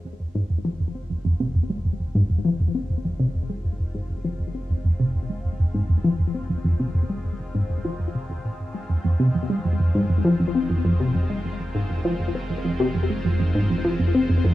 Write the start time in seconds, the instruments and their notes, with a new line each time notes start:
Already playing: sub bass F1, analog synth pad D#3 G#3 C4 F4
0.05 synth arpeggio sound F2
0.20 synth arpeggio sound F2
0.35 synth arpeggio sound G#2, analog synth pad C5
0.50 synth arpeggio sound F2
0.65 synth arpeggio sound F3
0.80 synth arpeggio sound F2
0.95 synth arpeggio sound C4
1.10 synth arpeggio sound F2
1.25 synth arpeggio sound F2
1.40 synth arpeggio sound C3
1.55 synth arpeggio sound F2
1.70 synth arpeggio sound G#3
1.85 synth arpeggio sound F2
2.00 synth arpeggio sound F2
2.15 synth arpeggio sound G#2
2.30 synth arpeggio sound F2
2.45 synth arpeggio sound F3
2.60 synth arpeggio sound F2
2.75 synth arpeggio sound C4
2.90 synth arpeggio sound F2
3.05 synth arpeggio sound F2
3.20 synth arpeggio sound C3
3.35 synth arpeggio sound F2
3.50 synth arpeggio sound G#3
3.65 synth arpeggio sound F2
3.80 synth arpeggio sound F2
3.94 synth arpeggio sound G#2
4.09 synth arpeggio sound F2
4.24 synth arpeggio sound F3
4.39 synth arpeggio sound F2
4.54 synth arpeggio sound C4
4.70 synth arpeggio sound F2
4.84 synth arpeggio sound F2
5.00 synth arpeggio sound C3
5.15 synth arpeggio sound F2
5.30 synth arpeggio sound G#3
5.45 synth arpeggio sound F2
5.60 synth arpeggio sound F2
5.75 synth arpeggio sound G#2
5.90 synth arpeggio sound F2
6.04 synth arpeggio sound F3
6.19 synth arpeggio sound F2
6.35 synth arpeggio sound C4
6.50 synth arpeggio sound F2
6.65 synth arpeggio sound F2
6.80 synth arpeggio sound C3
6.95 synth arpeggio sound F2
7.10 synth arpeggio sound G#3
7.25 synth arpeggio sound F2
7.40 synth arpeggio sound F2
7.55 synth arpeggio sound G#2
7.70 synth arpeggio sound F2
7.85 synth arpeggio sound F3
8.00 synth arpeggio sound F2
8.15 synth arpeggio sound C3
8.30 synth arpeggio sound F2
8.45 synth arpeggio sound A#2
8.60 synth arpeggio sound G#2
8.74 synth arpeggio sound G#3
8.89 sub bass F1, synth arpeggio sound F2
9.05 synth arpeggio sound F2
9.20 synth arpeggio sound C3
9.35 synth arpeggio sound F2
9.50 synth arpeggio sound G#3
9.65 synth arpeggio sound F2
9.80 synth arpeggio sound F2
9.95 synth arpeggio sound G#2
10.10 synth arpeggio sound F2
10.25 synth arpeggio sound F3
10.40 synth arpeggio sound F2
10.55 synth arpeggio sound C4
10.70 synth arpeggio sound F2
10.85 synth arpeggio sound F2
11.00 synth arpeggio sound C3
11.15 synth arpeggio sound F2
11.30 synth arpeggio sound G#3
11.45 synth arpeggio sound F2
11.60 synth arpeggio sound F2
11.75 synth arpeggio sound G#2
11.90 synth arpeggio sound F2
12.05 synth arpeggio sound F3
12.20 synth arpeggio sound F2
12.35 synth arpeggio sound C4
12.50 synth arpeggio sound F2
12.65 synth arpeggio sound F2
12.80 synth arpeggio sound C3
12.95 synth arpeggio sound F2
13.10 synth arpeggio sound G#3
13.25 synth arpeggio sound F2
13.40 synth arpeggio sound F2
13.55 synth arpeggio sound G#2
13.70 synth arpeggio sound F2
13.85 synth arpeggio sound F3
14.00 synth arpeggio sound F2
14.15 synth arpeggio sound C4
14.30 synth arpeggio sound F2
14.45 synth arpeggio sound F2